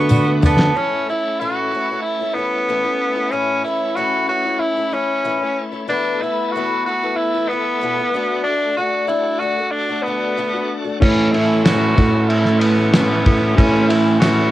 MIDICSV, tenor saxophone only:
0, 0, Header, 1, 2, 480
1, 0, Start_track
1, 0, Key_signature, 3, "major"
1, 0, Tempo, 641711
1, 557, Time_signature, 4, 2, 24, 8
1, 10855, End_track
2, 0, Start_track
2, 0, Title_t, "Tenor saxophone"
2, 0, Program_c, 0, 66
2, 0, Note_on_c, 0, 59, 96
2, 292, Note_off_c, 0, 59, 0
2, 338, Note_on_c, 0, 59, 93
2, 573, Note_on_c, 0, 61, 102
2, 584, Note_off_c, 0, 59, 0
2, 806, Note_off_c, 0, 61, 0
2, 819, Note_on_c, 0, 64, 98
2, 1049, Note_on_c, 0, 66, 109
2, 1060, Note_off_c, 0, 64, 0
2, 1508, Note_off_c, 0, 66, 0
2, 1513, Note_on_c, 0, 64, 90
2, 1751, Note_on_c, 0, 59, 103
2, 1762, Note_off_c, 0, 64, 0
2, 2479, Note_on_c, 0, 61, 100
2, 2490, Note_off_c, 0, 59, 0
2, 2720, Note_off_c, 0, 61, 0
2, 2724, Note_on_c, 0, 64, 91
2, 2965, Note_on_c, 0, 66, 105
2, 2976, Note_off_c, 0, 64, 0
2, 3204, Note_off_c, 0, 66, 0
2, 3209, Note_on_c, 0, 66, 112
2, 3439, Note_on_c, 0, 64, 103
2, 3450, Note_off_c, 0, 66, 0
2, 3693, Note_on_c, 0, 61, 97
2, 3704, Note_off_c, 0, 64, 0
2, 4210, Note_off_c, 0, 61, 0
2, 4409, Note_on_c, 0, 62, 109
2, 4651, Note_on_c, 0, 64, 95
2, 4662, Note_off_c, 0, 62, 0
2, 4837, Note_off_c, 0, 64, 0
2, 4837, Note_on_c, 0, 64, 80
2, 4878, Note_on_c, 0, 66, 104
2, 4889, Note_off_c, 0, 64, 0
2, 5123, Note_off_c, 0, 66, 0
2, 5131, Note_on_c, 0, 66, 105
2, 5360, Note_on_c, 0, 64, 93
2, 5371, Note_off_c, 0, 66, 0
2, 5598, Note_on_c, 0, 59, 99
2, 5609, Note_off_c, 0, 64, 0
2, 6306, Note_off_c, 0, 59, 0
2, 6310, Note_on_c, 0, 62, 99
2, 6541, Note_off_c, 0, 62, 0
2, 6560, Note_on_c, 0, 66, 99
2, 6786, Note_off_c, 0, 66, 0
2, 6791, Note_on_c, 0, 64, 88
2, 7026, Note_on_c, 0, 66, 103
2, 7037, Note_off_c, 0, 64, 0
2, 7263, Note_on_c, 0, 62, 89
2, 7275, Note_off_c, 0, 66, 0
2, 7498, Note_on_c, 0, 59, 84
2, 7510, Note_off_c, 0, 62, 0
2, 8029, Note_off_c, 0, 59, 0
2, 8238, Note_on_c, 0, 61, 91
2, 8467, Note_on_c, 0, 64, 92
2, 8479, Note_off_c, 0, 61, 0
2, 8706, Note_off_c, 0, 64, 0
2, 8710, Note_on_c, 0, 66, 95
2, 9197, Note_on_c, 0, 64, 90
2, 9208, Note_off_c, 0, 66, 0
2, 9426, Note_on_c, 0, 59, 94
2, 9437, Note_off_c, 0, 64, 0
2, 10146, Note_off_c, 0, 59, 0
2, 10150, Note_on_c, 0, 61, 97
2, 10374, Note_off_c, 0, 61, 0
2, 10386, Note_on_c, 0, 64, 93
2, 10611, Note_off_c, 0, 64, 0
2, 10619, Note_on_c, 0, 66, 103
2, 10855, Note_off_c, 0, 66, 0
2, 10855, End_track
0, 0, End_of_file